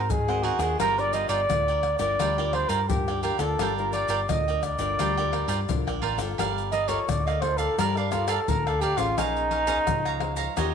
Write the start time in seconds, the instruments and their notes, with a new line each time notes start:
Already playing: fingered electric bass G#2, trumpet A#4
0.09 nylon-string guitar D#3, trumpet G#4, pandeiro, shaker, surdo
0.28 nylon-string guitar C4 F#4 A#4, cavaquinho G#4 C5 F#5, pandeiro, tamborim, shaker
0.43 cavaquinho D#4 G#4 C5 F#5, trumpet F#4, pandeiro
0.58 fingered electric bass D#2, nylon-string guitar D4 F4 A#4, trumpet G#4, cavaquinho G#4 C5 F#5, pandeiro, tamborim, shaker
0.79 fingered electric bass G1, nylon-string guitar G3, cavaquinho F4 A#4 D5 G5, trumpet A#4, pandeiro, tamborim, shaker, surdo
0.98 nylon-string guitar D4 F4 A#4, trumpet D5, pandeiro, shaker
1.13 cavaquinho F4 A#4 D5 G5, trumpet D#5, pandeiro, shaker
1.29 fingered electric bass G1, cavaquinho F4 A#4 D5 G5, trumpet D5, pandeiro, shaker
1.49 fingered electric bass D2, nylon-string guitar D3 D4 F4 A#4, pandeiro, tamborim, shaker, surdo
1.68 cavaquinho A#4 D5 G5, pandeiro, shaker
1.83 pandeiro, tamborim, surdo
1.99 fingered electric bass G1, nylon-string guitar D4 F4 A#4, cavaquinho A#4 D5 G5, trumpet D5, pandeiro, shaker, surdo
2.19 fingered electric bass D2, nylon-string guitar G3, cavaquinho F4 A#4 D5 G5, pandeiro, tamborim, shaker, surdo
2.38 nylon-string guitar D4 F4 A#4, cavaquinho A#4 D5 G5, pandeiro, shaker, surdo
2.53 cavaquinho F4 A#4 D5 G5, trumpet C5, pandeiro, tamborim
2.69 fingered electric bass G2, cavaquinho F4 A#4 D5 G5, trumpet A#4, pandeiro, shaker, surdo
2.89 nylon-string guitar D3 D4 F4 A#4, trumpet G4, pandeiro, shaker, surdo
3.08 cavaquinho A#4 D5 G5, pandeiro, tamborim, shaker
3.23 cavaquinho F4 A#4 D5 G5, trumpet G4, pandeiro, shaker
3.39 fingered electric bass D2, nylon-string guitar D4 F4 A#4, trumpet A4, cavaquinho A#4 D5 G5, pandeiro, tamborim, shaker
3.59 fingered electric bass G1, nylon-string guitar G3, cavaquinho F4 A#4 D5 G5, pandeiro, tamborim, shaker, surdo
3.78 nylon-string guitar D4 F4 A#4, trumpet A#4, pandeiro, shaker
3.93 cavaquinho F4 A#4 D5 G5, trumpet D5, pandeiro, shaker
4.08 fingered electric bass G1, cavaquinho F4 A#4 D5 G5, pandeiro, shaker
4.29 fingered electric bass D2, nylon-string guitar D3 F4 A#4, trumpet D#5, pandeiro, tamborim, shaker, surdo
4.48 cavaquinho A#4 D5 G5, pandeiro, shaker
4.63 trumpet D5, pandeiro, tamborim, shaker, surdo
4.78 fingered electric bass G1, nylon-string guitar D4 F4 A#4, cavaquinho A#4 D5 G5, pandeiro, shaker, surdo
4.99 fingered electric bass D2, nylon-string guitar G3, cavaquinho F4 A#4 D5 G5, pandeiro, tamborim, shaker, surdo
5.17 nylon-string guitar D4 F4 A#4, cavaquinho A#4 D5 G5, pandeiro, shaker, surdo
5.32 cavaquinho F4 A#4 D5 G5, pandeiro, tamborim, surdo
5.48 fingered electric bass G2, cavaquinho F4 A#4 D5 G5, pandeiro, shaker, surdo
5.68 fingered electric bass C2, nylon-string guitar D3 D4 F4 A#4, pandeiro, shaker, surdo
5.87 fingered electric bass A#1, cavaquinho A#4 D5 G5, pandeiro, tamborim, shaker
6.02 fingered electric bass A1, cavaquinho F4 A#4 D5 G5, pandeiro
6.18 fingered electric bass G1, nylon-string guitar A#3 F4 A4, cavaquinho A#4 D5 G5, pandeiro, tamborim, shaker
6.38 fingered electric bass G1, nylon-string guitar G3, cavaquinho G4 A#4 D5 F5, pandeiro, tamborim, shaker, surdo
6.58 pandeiro, shaker
6.72 cavaquinho G4 A#4 D5 F5, trumpet D#5, pandeiro, shaker
6.88 nylon-string guitar A#3 F4 A4, cavaquinho G4 A#4 D5 F5, trumpet C#5, pandeiro, shaker, surdo
7.08 fingered electric bass D2, nylon-string guitar D3, trumpet D5, pandeiro, tamborim, shaker, surdo
7.26 cavaquinho A#4 D5 F5, trumpet D#5, pandeiro, tamborim, shaker
7.41 nylon-string guitar A#3 F4 A4, trumpet C5, pandeiro, tamborim
7.58 trumpet A4, cavaquinho A#4 D5 F5, pandeiro, shaker, surdo
7.78 fingered electric bass G2, nylon-string guitar G3, cavaquinho G4 A#4 D5 F5, trumpet A#4, pandeiro, tamborim, shaker, surdo
7.97 trumpet D4, cavaquinho A#4 D5 F5, pandeiro, shaker
8.11 nylon-string guitar A#3 F4 A4, trumpet F4, cavaquinho G4 A#4 D5 F5, pandeiro, tamborim, shaker, surdo
8.28 cavaquinho G4 A#4 D5 F5, trumpet A4, pandeiro, tamborim, shaker
8.48 fingered electric bass D2, nylon-string guitar D3 A#3 F4 A4, trumpet A#4, pandeiro, shaker, surdo
8.66 trumpet A4, cavaquinho A#4 D5 F5, pandeiro, tamborim, shaker
8.81 trumpet G4, cavaquinho G4 A#4 D5 F5, pandeiro, shaker, surdo
8.97 fingered electric bass A1, nylon-string guitar C#4 G#4 C5, trumpet F4, cavaquinho A#4 D5 F5, pandeiro, tamborim, shaker, surdo
9.18 fingered electric bass A#1, nylon-string guitar A#3, trumpet D#4, cavaquinho G#4 C#5 F5 A#5, pandeiro, tamborim, shaker, surdo
9.36 pandeiro, shaker
9.51 cavaquinho G#4 C#5 F5 A#5, pandeiro
9.67 nylon-string guitar C#4 G#4 C5, cavaquinho G#4 C#5 F5 A#5, pandeiro, shaker, surdo
9.87 fingered electric bass C#2, nylon-string guitar F3, pandeiro, tamborim, shaker, surdo
10.05 cavaquinho C#5 F5 A#5, pandeiro, tamborim, shaker
10.20 nylon-string guitar C#4 G#4 C5, pandeiro, tamborim
10.36 cavaquinho C#5 F5 A#5, pandeiro, shaker, surdo
10.57 fingered electric bass D#2, nylon-string guitar D#3 C#4 F4 G4, cavaquinho D#4 G4 C#5 D#5, pandeiro, tamborim, shaker, surdo